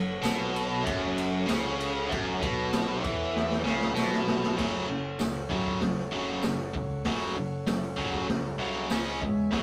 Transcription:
0.00 0.22 F#1 medium
0.00 0.17 F#2 medium
0.00 4.52 A4 medium
0.00 4.53 C#5 medium
0.00 4.54 F#5 medium
0.22 0.82 B1 medium
0.22 0.85 B2 loud
0.22 snare loud
0.22 ride loud
0.22 tambourine loud
0.56 ride medium
0.83 1.45 F#1 loud
0.83 1.46 F#2 loud
0.83 kick loud
0.83 ride loud
1.18 ride medium
1.46 2.07 C#2 loud
1.46 2.09 C#3 loud
1.46 snare loud
1.46 ride loud
1.46 tambourine medium
1.80 ride medium
2.08 2.40 F#1 loud
2.08 2.40 F#2 loud
2.08 kick loud
2.08 ride loud
2.41 3.00 B1 loud
2.41 3.02 B2 loud
2.41 kick loud
2.41 ride medium
2.73 snare loud
2.73 ride loud
2.73 tambourine medium
3.02 3.62 E2 medium
3.02 3.64 E3 loud
3.02 kick loud
3.02 ride medium
3.36 snare medium
3.51 snare medium
3.64 3.94 C#2 loud
3.64 3.94 C#3 medium
3.64 snare medium
3.81 snare medium
3.94 4.54 B1 medium
3.94 4.56 B2 medium
3.94 snare medium
3.94 tambourine medium
4.13 snare medium
4.27 snare loud
4.43 snare medium
4.55 4.88 F#1 medium
4.55 4.86 F#2 medium
4.55 4.86 C#3 loud
4.55 4.87 F#3 loud
4.55 8.86 A4 medium
4.55 8.87 C#5 medium
4.55 kick loud
4.55 snare loud
4.55 crash loud
4.59 8.88 F#5 medium
4.87 5.19 F#1 medium
4.87 5.17 F#2 medium
4.87 5.16 C#3 medium
5.19 5.49 C#2 medium
5.19 5.47 F#2 medium
5.19 5.48 C#3 medium
5.19 snare loud
5.19 open hi-hat medium
5.19 tambourine loud
5.50 5.80 F#2 medium
5.50 5.81 F#2 medium
5.50 5.80 C#3 medium
5.50 5.80 F#3 loud
5.50 kick medium
5.67 kick medium
5.81 6.12 F#1 medium
5.81 6.09 F#2 medium
5.81 6.10 C#3 medium
5.81 kick medium
5.81 snare loud
5.81 open hi-hat medium
6.11 6.43 F#1 medium
6.11 6.41 F#2 medium
6.11 6.42 C#3 medium
6.11 6.42 F#3 medium
6.43 6.74 F#1 medium
6.43 6.72 F#2 medium
6.43 6.72 C#3 medium
6.43 snare loud
6.43 open hi-hat medium
6.43 tambourine medium
6.74 7.04 C#2 medium
6.74 7.02 F#2 medium
6.74 7.02 C#3 medium
6.74 kick medium
7.05 7.36 F#1 medium
7.05 7.34 F#2 medium
7.05 7.35 C#3 medium
7.05 7.36 F#3 loud
7.05 kick loud
7.05 snare loud
7.05 open hi-hat medium
7.36 7.66 F#1 medium
7.36 7.64 F#2 medium
7.36 7.64 C#3 medium
7.67 7.97 F#1 medium
7.67 7.95 F#2 medium
7.67 7.95 C#3 medium
7.67 snare loud
7.67 open hi-hat medium
7.67 tambourine medium
7.97 8.28 F#1 medium
7.97 8.27 F#2 loud
7.97 8.27 C#3 loud
7.97 8.27 F#3 loud
7.97 kick medium
8.14 kick medium
8.28 8.89 C2 loud
8.28 8.57 F#2 medium
8.28 8.57 C#3 medium
8.28 kick medium
8.28 snare loud
8.28 open hi-hat medium
8.58 8.88 F#2 medium
8.58 8.88 C#3 loud
8.58 8.89 F#3 loud
8.90 9.21 C#2 medium
8.90 9.20 C#3 medium
8.90 9.20 G#3 medium
8.90 9.21 C#4 medium
8.90 9.53 G#4 medium
8.90 9.51 C#5 medium
8.90 9.54 G#5 medium
8.90 snare loud
8.90 open hi-hat medium
8.90 tambourine loud
9.21 9.52 E2 medium
9.21 9.50 C#3 medium
9.21 9.50 G#3 medium
9.21 9.52 E5 medium
9.21 kick medium
9.50 9.63 F#1 medium
9.50 9.63 F#2 medium
9.50 9.63 C#3 loud
9.50 9.63 F#3 loud
9.50 9.63 A4 medium
9.50 9.63 C#5 medium
9.50 9.63 F#5 medium
9.50 kick loud
9.50 snare loud
9.50 open hi-hat soft

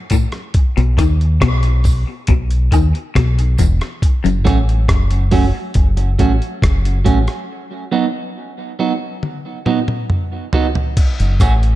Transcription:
0.10 0.25 A2 medium
0.10 kick medium
0.10 closed hi-hat medium
0.10 tambourine medium
0.32 cross-stick medium
0.32 closed hi-hat soft
0.54 kick loud
0.54 closed hi-hat medium
0.77 0.97 B1 medium
0.77 0.90 B2 medium
0.77 closed hi-hat soft
0.98 1.38 D#2 medium
0.98 1.24 D#3 medium
0.98 kick medium
0.98 cross-stick medium
0.98 closed hi-hat medium
0.98 tambourine soft
1.21 closed hi-hat soft
1.41 2.03 B1 loud
1.41 1.68 B2 medium
1.41 kick loud
1.41 cross-stick loud
1.41 closed hi-hat medium
1.63 closed hi-hat soft
1.84 kick medium
1.84 open hi-hat medium
1.84 tambourine medium
2.27 2.68 B1 medium
2.27 2.54 B2 medium
2.27 kick loud
2.27 closed hi-hat medium
2.50 closed hi-hat soft
2.72 2.92 D#2 medium
2.72 2.85 D#3 medium
2.72 kick medium
2.72 closed hi-hat medium
2.72 tambourine soft
2.72 high woodblock medium
2.95 closed hi-hat soft
3.15 3.56 B1 loud
3.15 3.41 B2 medium
3.15 kick loud
3.15 cross-stick loud
3.15 closed hi-hat loud
3.39 closed hi-hat medium
3.58 3.79 E1 medium
3.58 3.72 E2 medium
3.58 kick medium
3.58 closed hi-hat medium
3.58 tambourine medium
3.81 cross-stick medium
3.81 closed hi-hat soft
4.02 kick loud
4.02 closed hi-hat loud
4.24 4.44 F#1 medium
4.24 4.37 F#2 medium
4.24 closed hi-hat soft
4.45 4.85 A1 loud
4.45 4.57 F#3 medium
4.45 4.57 A3 medium
4.45 4.58 C#4 medium
4.45 4.58 F#4 medium
4.45 kick medium
4.45 cross-stick medium
4.45 closed hi-hat medium
4.69 closed hi-hat soft
4.88 5.50 F#1 medium
4.88 kick medium
4.88 cross-stick loud
4.88 closed hi-hat medium
5.11 closed hi-hat medium
5.31 5.44 F#3 medium
5.31 5.44 A3 medium
5.31 5.45 C#4 medium
5.31 5.45 F#4 medium
5.31 kick medium
5.31 open hi-hat medium
5.74 6.16 F#1 medium
5.74 kick loud
5.74 closed hi-hat medium
5.97 muted clean electric guitar stroke soft
5.97 closed hi-hat soft
6.19 6.39 A1 medium
6.19 6.31 F#3 medium
6.19 6.32 A3 medium
6.19 6.32 C#4 medium
6.19 6.32 F#4 medium
6.19 kick medium
6.19 closed hi-hat medium
6.42 closed hi-hat soft
6.62 7.03 F#1 loud
6.62 kick loud
6.62 cross-stick loud
6.62 closed hi-hat medium
6.85 closed hi-hat medium
7.04 7.26 A1 medium
7.04 7.18 F#3 medium
7.04 7.18 A3 medium
7.04 7.18 C#4 medium
7.04 7.18 F#4 medium
7.04 kick medium
7.04 closed hi-hat medium
7.28 cross-stick medium
7.28 closed hi-hat soft
7.92 8.05 F#3 medium
7.92 8.05 B3 medium
7.92 8.05 D#4 medium
7.92 8.05 F#4 medium
8.79 8.92 F#3 medium
8.79 8.92 B3 medium
8.79 8.92 D#4 medium
8.79 8.92 F#4 medium
9.23 high tom medium
9.66 9.79 F#3 medium
9.66 9.79 B3 medium
9.66 9.79 D#4 medium
9.66 9.79 F#4 medium
9.66 mid tom medium
9.88 mid tom medium
10.10 mid tom medium
10.53 10.66 F#3 medium
10.53 10.66 B3 medium
10.53 10.66 D#4 medium
10.53 10.66 F#4 medium
10.53 floor tom medium
10.75 floor tom medium
10.97 kick loud
10.97 closed hi-hat loud
10.97 crash loud
11.20 11.39 F#1 medium
11.20 closed hi-hat medium
11.40 11.76 A1 medium
11.40 11.53 F#3 medium
11.40 11.53 A3 medium
11.40 11.53 C#4 medium
11.40 11.53 F#4 medium
11.40 kick medium
11.40 cross-stick medium
11.40 closed hi-hat medium
11.40 tambourine soft
11.63 closed hi-hat soft

